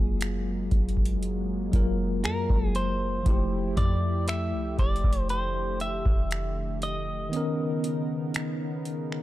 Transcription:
Already playing: F#1 F#3 G#3 A#3 F4 G#4
0.21 finger snap, closed hi-hat
0.71 F#1, kick, closed hi-hat
0.89 closed hi-hat
0.97 kick
1.05 closed hi-hat
1.23 closed hi-hat
1.72 F#1 F#3 A#3 F4 A#4, kick, closed hi-hat
2.24 F#2 A#4, finger snap, closed hi-hat
2.50 F#1, kick
2.67 G#4
2.75 C5, closed hi-hat
3.23 F1 F3 A3 E4 G4, kick, closed hi-hat
3.27 E4 G4
3.77 F2 D5, kick, closed hi-hat
4.28 E5, finger snap, closed hi-hat
4.53 C2
4.79 F1 D5, kick, closed hi-hat
4.96 closed hi-hat
5.04 F1, kick
5.13 closed hi-hat
5.29 D3 C5, closed hi-hat
5.80 E5, closed hi-hat
6.06 F1, kick
6.31 finger snap, closed hi-hat
6.82 D#5, closed hi-hat
7.29 C#3 D#3 B3 D#4 A#4, closed hi-hat
7.34 C#4 A#4
7.84 closed hi-hat
8.34 finger snap, closed hi-hat
8.85 closed hi-hat
9.12 finger snap

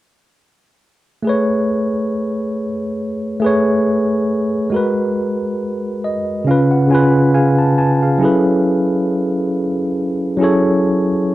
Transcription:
1.22 A3 G#4
1.27 B4 C#5
3.40 A3 G#4
3.44 B4 C#5
4.70 G#3 F#4
4.74 A#4 B4
6.04 D#5
6.44 C#3 C#4 F5
6.49 F4 B4
6.71 F#5
6.87 C#3 C#4 G#5
6.92 F4 B4
7.34 G#4 F5 G#5
7.59 A5
7.78 B4 G#5 A5
8.03 G#4 F5
8.18 F#3 C#4 E4
8.23 G#4 A4 B4
10.37 F#3 C#4 E4
10.41 G#4 A4 C#5

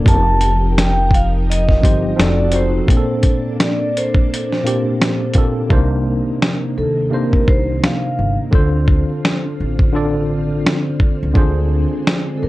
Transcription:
0.04 F1 F3 C4 D#4 G4 A#4, kick, closed hi-hat
0.08 A5
0.41 closed hi-hat
0.78 G5, finger snap, snare, closed hi-hat
1.11 F5, kick, closed hi-hat
1.50 D#5, closed hi-hat
1.69 kick, snare
1.81 G1 F3 C4 D#4 G4 C5, kick, closed hi-hat
2.16 F1 F3 C4 D#4 F#4 A4, finger snap, snare
2.21 D5, closed hi-hat
2.51 F3 C4 D#4 F#4 C5, closed hi-hat
2.56 C5
2.86 A#2 A#3 C4 D4 G#4 A4, kick
2.90 closed hi-hat
2.97 A4
3.23 kick, closed hi-hat
3.60 D5, finger snap, snare, closed hi-hat
3.97 C5, closed hi-hat
4.15 kick
4.34 closed hi-hat
4.53 snare
4.63 A#2 A#3 C4 D4 G4, closed hi-hat
5.02 finger snap, snare, closed hi-hat
5.34 A#2 A#3 C4 D4, kick, closed hi-hat
5.38 A4
5.69 C2 C3 D#3 A#3 D4 D#4 C5, kick
6.42 finger snap, snare
6.78 D#2 A4
7.10 C3 A#3 D4 D#4 A#4
7.14 C5
7.33 kick
7.48 C2 C5, kick
7.84 F5, finger snap, snare
8.19 G1
8.51 D2 D3 C4 D4 F4 A4, kick
8.55 C5
8.88 kick
9.25 finger snap, snare
9.60 A1
9.79 kick
9.92 D3 D4 F4 A4 D5
10.66 finger snap, snare
11.00 kick
11.23 C#2
11.34 D2 D3 G#3 D4 F4 G#4 C5, kick
12.07 finger snap, snare
12.38 A4
12.43 F2 A#4

